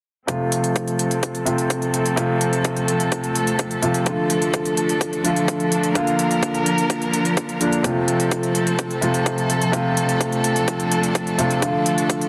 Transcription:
0.27 C3 F3 A3 C4 F4 A4, kick, closed hi-hat
0.52 closed hi-hat
0.64 closed hi-hat
0.76 kick, closed hi-hat
0.88 closed hi-hat
0.99 closed hi-hat
1.11 closed hi-hat
1.23 kick, closed hi-hat
1.35 closed hi-hat
1.45 C3 F3 A3 F4, closed hi-hat
1.58 closed hi-hat
1.70 kick, closed hi-hat
1.82 closed hi-hat
1.94 closed hi-hat
2.06 closed hi-hat
2.16 C3 F3 A3 F4, kick, closed hi-hat
2.41 closed hi-hat
2.53 closed hi-hat
2.64 kick, closed hi-hat
2.76 closed hi-hat
2.88 closed hi-hat
3.00 closed hi-hat
3.12 kick, closed hi-hat
3.24 closed hi-hat
3.35 closed hi-hat
3.47 closed hi-hat
3.59 kick, closed hi-hat
3.71 closed hi-hat
3.82 C3 F3 A3 F4, closed hi-hat
3.94 closed hi-hat
4.05 D3 F3 A3 D4 F4, kick, closed hi-hat
4.30 closed hi-hat
4.42 closed hi-hat
4.54 kick, closed hi-hat
4.65 closed hi-hat
4.77 closed hi-hat
4.89 closed hi-hat
5.01 kick, closed hi-hat
5.13 closed hi-hat
5.23 D3 F3 A3 F4, closed hi-hat
5.36 closed hi-hat
5.48 kick, closed hi-hat
5.60 closed hi-hat
5.72 closed hi-hat
5.83 closed hi-hat
5.94 D3 F3 A#3 F4 A#4, kick, closed hi-hat
6.07 closed hi-hat
6.19 closed hi-hat
6.31 closed hi-hat
6.43 kick, closed hi-hat
6.54 closed hi-hat
6.66 closed hi-hat
6.78 closed hi-hat
6.90 kick, closed hi-hat
7.02 closed hi-hat
7.13 closed hi-hat
7.25 closed hi-hat
7.37 kick, closed hi-hat
7.49 closed hi-hat
7.60 D3 F3 A#3 D4, closed hi-hat
7.73 closed hi-hat
7.83 C3 F3 A3 C4 F4 A4, kick, closed hi-hat
8.08 closed hi-hat
8.20 closed hi-hat
8.31 kick, closed hi-hat
8.43 closed hi-hat
8.55 closed hi-hat
8.67 closed hi-hat
8.79 kick, closed hi-hat
8.91 closed hi-hat
9.01 C3 F3 A3 F4, closed hi-hat
9.14 closed hi-hat
9.26 kick, closed hi-hat
9.38 closed hi-hat
9.50 closed hi-hat
9.62 closed hi-hat
9.72 C3 F3 A3 D4 F4, kick, closed hi-hat
9.97 closed hi-hat
10.09 closed hi-hat
10.21 kick, closed hi-hat
10.32 closed hi-hat
10.44 closed hi-hat
10.56 closed hi-hat
10.68 kick, closed hi-hat
10.80 closed hi-hat
10.92 closed hi-hat
11.03 closed hi-hat
11.15 kick, closed hi-hat
11.27 closed hi-hat
11.38 C3 F3 A3 F4, closed hi-hat
11.51 closed hi-hat
11.61 D3 F3 A3 F4, kick, closed hi-hat
11.86 closed hi-hat
11.98 closed hi-hat
12.10 kick, closed hi-hat
12.21 closed hi-hat

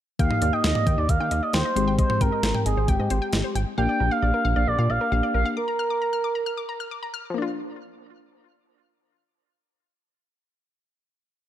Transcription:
0.19 D#2 A#3 D#4 G4 F5 G5, kick, closed hi-hat
0.31 D#5, mid tom
0.42 D#2 D5, closed hi-hat
0.53 D#5 G5
0.64 D#2 D#5, snare, closed hi-hat
0.75 D5, mid tom
0.87 D#2 G5, kick, closed hi-hat
0.98 D#2 D5 D#5
1.09 D#2 F5, kick, closed hi-hat
1.20 D#3 G5
1.31 D#2 D#5, closed hi-hat
1.42 D5 D#5
1.53 D#2 C5 G5, snare, closed hi-hat
1.65 D#5
1.76 G#1 G#3 C4 G4 C5, closed hi-hat
1.88 G5
1.98 C5 D#5, kick, closed hi-hat
2.10 C5, mid tom
2.21 G#1 A#4 G5, kick, closed hi-hat
2.32 D#5
2.43 G#1 C5, snare, closed hi-hat
2.55 G5, mid tom
2.66 G#1 G#4 D#5, closed hi-hat
2.77 G#1 C5
2.88 G#1 G4 G5, kick, closed hi-hat
2.99 G#2 D#5
3.10 G#1 C5, closed hi-hat
3.22 G5
3.33 G#1 D#5, snare, closed hi-hat
3.44 C5
3.55 G#1 G5, closed hi-hat
3.78 A#1 A#3 D4 G4 F5 G5
3.89 D5
4.00 A#1 A#4
4.11 F5
4.22 A#1 D5
4.34 A#4
4.45 A#1 F5
4.56 A#1 D5 F5
4.67 A#1 D5
4.79 A#2 F5
4.90 A#1 D5 F5
5.01 A#4
5.12 A#1 A#3 D4 G4 F5
5.23 D5
5.34 A#1 A#4 F5
5.46 F5
5.57 A#4 D6
5.68 A#5
5.79 F6
5.90 D6
6.02 A#5
6.13 F6
6.24 D6
6.35 A#5
6.46 F6
6.57 D6
6.69 A#5
6.80 F6
6.91 D6
7.03 A#5
7.14 F6
7.30 F3 A#3
7.38 D4
7.42 F4

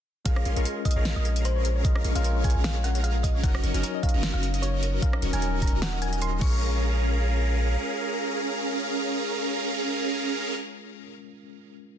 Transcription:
0.25 A#1 G#3 C#4 F4 G#4 A#4 F5 A#5, kick, closed hi-hat
0.36 C#5, cross-stick
0.45 A#1 C#4 G#4 A#4 F5 C6, closed hi-hat
0.54 A#1 G#3 C#4 F4 G#4 A#4 C#5 F5 C#6, closed hi-hat
0.65 G#4, closed hi-hat
0.76 G#4
0.85 G#4 D#5, kick, closed hi-hat
0.91 closed hi-hat
0.96 A#1 C#4 G#4 A#4 C#5 F5 A#5
1.05 A#4, snare, closed hi-hat
1.16 A#1 C#4 G#4 A#4 C#5 D#5 F5 A#5
1.25 G#4, closed hi-hat
1.36 G#4, closed hi-hat
1.45 G#4 C5, closed hi-hat
1.56 C#5
1.65 A#4, closed hi-hat
1.76 C#5
1.84 G#3 C#4 F4 G#4 A#4 D#5, kick, closed hi-hat
1.95 G#4, cross-stick
2.04 A#1 C#4 G#4 A#4 F5 C#6, closed hi-hat
2.13 A#1 G#3 C#4 F4 G#4 A#4 C#5 F5 C#6, closed hi-hat
2.18 A#4
2.24 A#4, closed hi-hat
2.35 C#5
2.44 G#4 G#5, kick, closed hi-hat
2.50 closed hi-hat
2.55 A#1 C#4 G#4 A#4 F5 A#5
2.64 G#4 F5, snare, closed hi-hat
2.75 C#5
2.84 A#4 F#5, closed hi-hat
2.95 C#5, closed hi-hat
3.03 G#4 F5, closed hi-hat
3.15 G#4
3.23 G#4 D#5, kick, closed hi-hat
3.35 C#5
3.42 F#1 F#3 C#4 D#4 F#4 A#4 C#5 D#5 F#5 A#5, kick, closed hi-hat
3.54 D#5, cross-stick
3.63 F#1 C#4 F#4 A#4 D#5 C#6, closed hi-hat
3.72 F#1 F#3 C#4 D#4 F#4 A#4 D#5 A#5, closed hi-hat
3.76 A#4
3.83 A#4, closed hi-hat
3.94 D#5
4.03 C#5 F5, kick, closed hi-hat
4.09 closed hi-hat
4.14 F#1 C#4 F#4 A#4 D#5 A#5
4.23 A#4, snare, closed hi-hat
4.34 F#1 C#4 F#4 A#4 D#5 F5 A#5
4.43 A#4, closed hi-hat
4.54 D#5, closed hi-hat
4.62 C#5, closed hi-hat
4.73 D#5
4.82 A#4, closed hi-hat
4.94 A#4
5.01 F#3 C#4 D#4 A#4 F5, kick, closed hi-hat
5.13 D#5, cross-stick
5.22 D#1 C#4 F#4 A#4 C#5 D#5 C#6, closed hi-hat
5.31 D#1 F#3 C#4 D#4 F#4 A#4 D#5 G#5 C#6, closed hi-hat
5.35 A#4
5.42 A#4, closed hi-hat
5.53 A#4
5.62 A#4 A#5, kick, closed hi-hat
5.67 closed hi-hat
5.73 D#1 C#4 F#4 A#4 D#5 A#5
5.82 C#5 F#5, snare, closed hi-hat
5.93 D#5
6.02 A#4 G#5, closed hi-hat
6.12 D#5, closed hi-hat
6.21 A#4 C6, closed hi-hat
6.32 D#5
6.39 A#1 G#3 C#4 F4 G#4 A#4 F5 A#5 C#6, kick, crash
6.45 A#4

